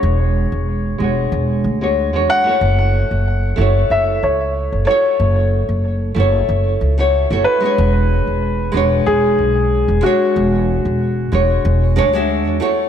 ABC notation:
X:1
M:4/4
L:1/16
Q:"Swing 16ths" 1/4=93
K:Emix
V:1 name="Grand piano"
c6 z8 f2- | f8 e2 c4 c2- | c2 z12 B2- | B8 G6 F2- |
F12 z4 |]
V:2 name="Nylon-string guitar"
[G,DFc]6 [G,DFc]4- [G,DFc] [G,DFc]2 [G,DFc]2 [A,EFc]- | [A,EFc]6 [A,EFc]8 [A,EFc]2- | [A,EFc]6 [A,EFc]4- [A,EFc] [A,EFc]2 [A,EFc]2 [G,DFc]- | [G,DFc]6 [G,DFc]8 [G,DFc]2- |
[G,DFc]6 [G,DFc]4 [G,DFc] [G,DFe]3 [A,EFc]2 |]
V:3 name="Upright bass" clef=bass
E,,,3 E,,,3 E,,,2 E,,,2 D,,3 E,, z2 | F,,,3 F,,,3 F,,,2 F,,,2 C,,3 F,,, z2 | F,,,3 F,,,3 F,,,2 F,,,2 C,,3 F,,, z2 | E,,,3 E,,,3 E,,,2 E,,,2 B,,,3 E,,, z2 |
E,,,3 E,,,3 E,,,2 E,,,2 D,,3 E,, z2 |]